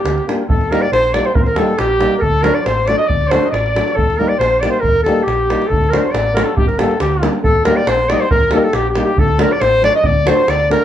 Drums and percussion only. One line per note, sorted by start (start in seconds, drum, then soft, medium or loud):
0.06 davul high medium
0.18 davul high soft
0.29 davul high medium
0.50 davul low medium
0.61 davul high soft
0.72 davul high medium
0.93 davul high medium
1.14 davul high medium
1.25 davul high soft
1.35 davul low medium
1.46 davul high soft
1.56 davul high medium
1.79 davul high medium
2.01 davul high medium
2.11 davul high soft
2.22 davul low medium
2.34 davul high soft
2.44 davul high medium
2.66 davul high medium
2.88 davul high medium
2.99 davul high soft
3.10 davul low medium
3.21 davul high soft
3.31 davul high medium
3.43 davul high soft
3.54 davul high medium
3.66 davul high soft
3.76 davul high medium
3.88 davul high soft
3.98 davul low medium
4.10 davul high soft
4.41 davul high medium
4.63 davul high medium
4.74 davul high soft
4.84 davul low medium
4.96 davul high soft
5.06 davul high medium
5.28 davul high medium
5.50 davul high medium
5.62 davul high soft
5.73 davul low medium
5.84 davul high soft
5.93 davul high medium
6.15 davul high medium
6.37 davul high medium
6.47 davul high soft
6.57 davul low medium
6.69 davul high soft
6.79 davul high medium
6.91 davul high soft
7.00 davul high medium
7.12 davul high soft
7.23 davul high medium
7.33 davul high soft
7.44 davul low medium
7.55 davul high soft
7.65 davul high medium
7.87 davul high medium
8.10 davul high medium
8.20 davul high soft
8.31 davul low medium
8.41 davul high soft
8.51 davul high medium
8.73 davul high medium
8.95 davul high medium
9.07 davul high soft
9.18 davul low medium
9.28 davul high soft
9.39 davul high medium
9.62 davul high medium
9.84 davul high medium
9.94 davul high soft
10.04 davul low medium
10.27 davul high medium
10.37 davul high soft
10.48 davul high medium
10.60 davul high soft
10.71 davul high medium
10.81 davul high soft